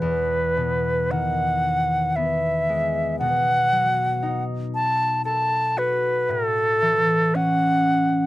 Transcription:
Already playing: harp E5 F#5
0.00 harp E2, flute B4
0.57 harp B2
1.11 harp D#3, flute F#5
2.16 harp B3, flute E5
2.69 harp G#3
3.19 harp B2, flute F#5
3.72 harp F#3
4.23 harp D#4
4.74 flute A5
5.25 harp A4, flute A5
5.77 harp F#4, flute B4
6.29 harp A2, flute A4
6.82 harp E3
7.35 harp C#4, flute F#5

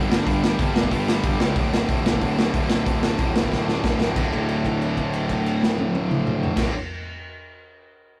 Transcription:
Already playing: distorted electric guitar G2 D3 G3 B3 D4 G4
0.11 picked electric bass G1, distorted electric guitar G2 D3 G3, snare
0.24 picked electric bass G1, distorted electric guitar G2 D3 G3 B3 D4 G4, kick, open hi-hat
0.43 distorted electric guitar G2 D3 G3, snare
0.59 picked electric bass G1, distorted electric guitar G2 D3 G3, kick, open hi-hat
0.74 picked electric bass G1, distorted electric guitar G2 D3 G3, snare
0.83 kick
0.90 picked electric bass G1, distorted electric guitar G2 D3 G3 B3 D4 G4, kick, open hi-hat
1.08 distorted electric guitar G2 D3 G3, snare
1.24 picked electric bass G1, distorted electric guitar G2 D3 G3, kick, open hi-hat
1.40 picked electric bass C#2, distorted electric guitar G2 D3 G3, snare
1.55 picked electric bass D1, distorted electric guitar D2 A2 D3, kick, open hi-hat
1.74 distorted electric guitar D2 A2 D3, snare
1.89 picked electric bass D1, distorted electric guitar D2 A2 D3, kick, open hi-hat
2.06 picked electric bass D1, distorted electric guitar D2 A2 D3, snare
2.13 kick
2.21 picked electric bass D1, distorted electric guitar D2 A2 D3, kick, open hi-hat
2.39 distorted electric guitar D2 A2 D3, snare
2.54 picked electric bass D1, distorted electric guitar D2 A2 D3, kick, open hi-hat
2.70 picked electric bass D1, distorted electric guitar D2 A2 D3, snare
2.86 picked electric bass D1, distorted electric guitar D2 A2 D3, kick, open hi-hat
3.03 distorted electric guitar D2 A2 D3, snare
3.18 picked electric bass D1, distorted electric guitar D2 A2 D3, kick, open hi-hat
3.35 picked electric bass D1, distorted electric guitar D2 A2 D3, snare
3.44 kick
3.52 picked electric bass D1, distorted electric guitar D2 A2 D3, kick, snare
3.67 distorted electric guitar D2 A2 D3, snare
3.84 picked electric bass D1, distorted electric guitar D2 A2 D3, kick, snare
4.00 picked electric bass D1, distorted electric guitar D2 A2 D3, snare
4.15 picked electric bass D1, distorted electric guitar D2 A2 D3, kick, crash
4.32 kick, crash
4.48 crash
4.65 kick, crash
4.81 crash
4.97 kick, crash
5.13 crash
5.29 kick, crash
5.46 crash
5.63 snare
5.78 high tom
5.95 high tom
6.11 mid tom
6.27 mid tom
6.43 floor tom
6.56 picked electric bass D1, distorted electric guitar D2 A2 D3, kick, snare, crash

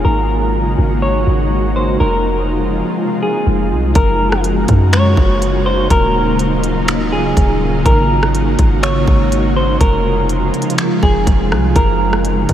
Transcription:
Already playing: ambient pad A#3
0.05 808-style bass G#1, ambient pad C#3 G#3 D#4 F#4, clean electric guitar A#4
0.78 808-style bass G#1
1.02 clean electric guitar C#5
1.27 808-style bass G#1
1.76 clean electric guitar C5
2.00 808-style bass F1, ambient pad C3 F3 G#3 F4, clean electric guitar A#4
3.23 clean electric guitar G#4
3.47 808-style bass F1
3.71 808-style bass C2
3.95 808-style bass F#1, ambient pad C#3 G#3 A#3 D#4 F#4, clean electric guitar A#4, kick, closed hi-hat
4.32 cross-stick
4.44 closed hi-hat
4.68 808-style bass F#2, kick, closed hi-hat
4.93 clean electric guitar C#5, finger snap, closed hi-hat
5.17 808-style bass F#1, kick
5.42 closed hi-hat
5.66 clean electric guitar C5
5.90 808-style bass D#1, ambient pad F#3 F4, clean electric guitar A#4, kick, closed hi-hat
6.39 closed hi-hat
6.64 closed hi-hat
6.88 finger snap, closed hi-hat
7.12 clean electric guitar G#4
7.37 808-style bass D#1, kick, closed hi-hat
7.85 808-style bass G#1, ambient pad G#3 A#3 F#4, clean electric guitar A#4, kick, closed hi-hat
8.23 cross-stick
8.35 closed hi-hat
8.59 808-style bass G#1, kick, closed hi-hat
8.83 clean electric guitar C#5, finger snap, closed hi-hat
9.08 808-style bass G#1, kick
9.32 closed hi-hat
9.56 clean electric guitar C5
9.81 808-style bass F1, ambient pad C3 F3 F4, clean electric guitar A#4, kick, closed hi-hat
10.29 closed hi-hat
10.54 closed hi-hat
10.62 closed hi-hat
10.70 closed hi-hat
10.78 finger snap, closed hi-hat
11.03 808-style bass F1, clean electric guitar G#4, kick
11.27 808-style bass F1, kick, closed hi-hat
11.51 808-style bass C2, cross-stick
11.75 808-style bass F#1, ambient pad C#3 A#3 F#4, clean electric guitar A#4, kick, closed hi-hat
12.13 cross-stick
12.25 closed hi-hat
12.49 808-style bass F#2, kick, closed hi-hat

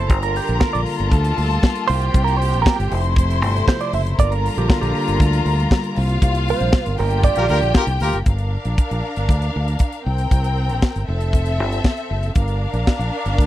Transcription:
Already playing: clean electric guitar C5
0.09 fingered electric bass G1, string section D3 G3 A#3 F4 A#4 A#5, kick, closed hi-hat
0.23 clean electric guitar A#4, closed hi-hat
0.36 clean electric guitar G4, open hi-hat
0.48 fingered electric bass A#1, closed hi-hat
0.60 clean electric guitar A#4, kick, snare
0.73 fingered electric bass A#1, clean electric guitar D5, closed hi-hat
0.86 open hi-hat
0.99 fingered electric bass G1, closed hi-hat
1.11 fingered electric bass D2, string section A4 A5, kick, closed hi-hat
1.24 closed hi-hat
1.38 fingered electric bass D2, open hi-hat
1.51 closed hi-hat
1.63 kick, snare
1.75 closed hi-hat
1.88 fingered electric bass C2, string section C3 G4 G5, clean electric guitar C5, open hi-hat
2.02 closed hi-hat
2.14 fingered electric bass C2, kick, closed hi-hat
2.24 clean electric guitar A#4, closed hi-hat
2.37 clean electric guitar C5
2.42 open hi-hat
2.53 fingered electric bass A#1, closed hi-hat
2.62 clean electric guitar A#4
2.66 kick, snare
2.76 fingered electric bass G1, clean electric guitar G4, closed hi-hat
2.90 fingered electric bass F1, string section F3 A3 E4 C5 C6, open hi-hat
3.04 closed hi-hat
3.16 kick, closed hi-hat
3.30 closed hi-hat
3.42 fingered electric bass G1, open hi-hat
3.56 closed hi-hat
3.68 clean electric guitar C5, kick, snare
3.81 clean electric guitar D5, closed hi-hat
3.93 fingered electric bass F#1, clean electric guitar E5, open hi-hat
4.07 closed hi-hat
4.18 fingered electric bass G1, string section D3 G3 A#3 F4 A#4 A#5, clean electric guitar D5, kick, closed hi-hat
4.32 clean electric guitar A#4, closed hi-hat
4.46 open hi-hat
4.57 fingered electric bass A#1, clean electric guitar G4, closed hi-hat
4.69 clean electric guitar F4, kick, snare
4.81 fingered electric bass A#1, clean electric guitar G4, closed hi-hat
4.94 clean electric guitar G4, open hi-hat
5.08 fingered electric bass G1, closed hi-hat
5.20 fingered electric bass D2, kick, closed hi-hat
5.33 closed hi-hat
5.45 fingered electric bass D2, open hi-hat
5.60 closed hi-hat
5.71 kick, snare
5.84 closed hi-hat
5.95 fingered electric bass C2, string section C3 A#3 F4 F5, open hi-hat
6.09 closed hi-hat
6.22 fingered electric bass C2, kick, closed hi-hat
6.35 closed hi-hat
6.48 clean electric guitar C5, open hi-hat
6.60 fingered electric bass A#1, closed hi-hat
6.73 kick, snare
6.86 fingered electric bass G1, closed hi-hat
6.98 fingered electric bass G1, string section D3 F4 G4 G5, clean electric guitar A#4, open hi-hat
7.10 closed hi-hat
7.24 clean electric guitar D5, kick, closed hi-hat
7.35 fingered electric bass A#1, horn section F4 G4 A#4, closed hi-hat
7.49 fingered electric bass D2, horn section F4 G4 A#4, open hi-hat
7.62 fingered electric bass A#1, closed hi-hat
7.75 horn section F4 G4 A#4, kick, snare
7.87 fingered electric bass C2, closed hi-hat
8.00 fingered electric bass D2, horn section F4 G4 A#4, open hi-hat
8.13 fingered electric bass F#1, closed hi-hat
8.26 fingered electric bass G1, string section D4 A#4 F5, kick, closed hi-hat
8.38 closed hi-hat
8.65 fingered electric bass A#1, closed hi-hat
8.78 kick, closed hi-hat
8.91 fingered electric bass A#1, closed hi-hat
9.16 fingered electric bass G1, closed hi-hat
9.29 fingered electric bass D2, kick, closed hi-hat
9.42 closed hi-hat
9.56 fingered electric bass D2
9.68 closed hi-hat
9.79 kick, closed hi-hat
9.92 closed hi-hat
10.05 fingered electric bass C2, string section C4 A#4 G5
10.18 closed hi-hat
10.31 fingered electric bass C2, kick, closed hi-hat
10.44 closed hi-hat
10.69 fingered electric bass A#1, closed hi-hat
10.82 kick, snare
10.96 fingered electric bass G1, closed hi-hat
11.07 fingered electric bass F1, string section C4 A4 E5
11.21 closed hi-hat
11.33 kick, closed hi-hat
11.46 closed hi-hat
11.60 fingered electric bass G1
11.72 closed hi-hat
11.84 kick, snare
11.97 closed hi-hat
12.11 fingered electric bass F#1
12.23 closed hi-hat
12.35 fingered electric bass G1, string section D4 A#4 F5, kick, closed hi-hat
12.48 closed hi-hat
12.73 fingered electric bass A#1, closed hi-hat
12.87 kick, snare
12.99 fingered electric bass A#1, closed hi-hat
13.26 fingered electric bass G1, closed hi-hat
13.38 fingered electric bass D2, kick, closed hi-hat

